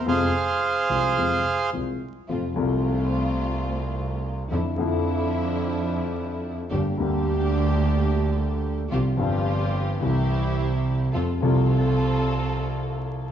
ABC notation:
X:1
M:4/4
L:1/8
Q:1/4=108
K:Fm
V:1 name="Bandoneon"
[Acf]6 z2 | [K:F] z8 | z8 | z8 |
z8 | z8 |]
V:2 name="String section"
z8 | [K:F] [A,CF] [A,CF]6- [A,CF] | [F,DE] [F,DE]6- [F,DE] | [B,DG] [B,DG]6- [B,DG] |
[CFG] [CFG]3 [CEG]4 | [CFA] [CFA]6- [CFA] |]
V:3 name="Grand piano" clef=bass
[F,,C,F,A,F] z2 [C,,C,F,A,F] [F,,C,F,A,F] z [C,,C,F,A,F] z | [K:F] [F,,C,F,A,F] [C,,C,F,A,F]6- [C,,C,F,A,F] | [F,,D,F,A,E] [F,,D,F,A,E]6- [F,,D,F,A,E] | [G,,,G,,D,G,B,G] [D,,D,G,B,G]6- [D,,D,G,B,G] |
[C,,C,F,G,CG] [G,,,G,,F,G,CG]3 [C,,C,E,G,CG]4 | [F,,C,F,A,F] [C,,C,F,A,F]6- [C,,C,F,A,F] |]
V:4 name="Double bass" clef=bass
F,, z2 C,, F,, z C,, z | [K:F] F,, C,,6- C,, | F,, F,,6- F,, | G,,, D,,6- D,, |
C,, G,,,3 C,,4 | F,, C,,6- C,, |]